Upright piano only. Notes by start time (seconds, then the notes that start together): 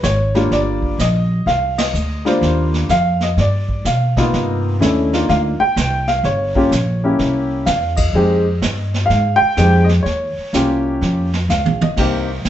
0.04 C#5
0.35 G3 A#3 D4 F4
0.53 D5
1.01 D#5
1.47 F5
1.78 D#5
2.25 G3 A#3 D4 F4 C5
2.91 F5
3.23 D#5
3.40 D5
3.86 F5
4.17 C3 A#3 B3 D#4 F4 D#5
4.81 A3 C#4 D4 E4
5.13 A#3 D4 D#4 F4
5.30 F5
5.60 G5
6.08 F5
6.25 C#5
6.55 A#3 C#4 F4 G4
7.04 A#3 C#4 E4 G4
7.66 F5
7.96 D#5
8.15 G#3 C4 D#4 G4
9.06 F5
9.36 G5
9.58 G#3 C4 D#4 G4
9.84 D#5
10.03 C#5
10.54 A#3 C#4 F4 G4
11.50 F5
11.82 D#5
11.98 A#3 C4 D#4 G4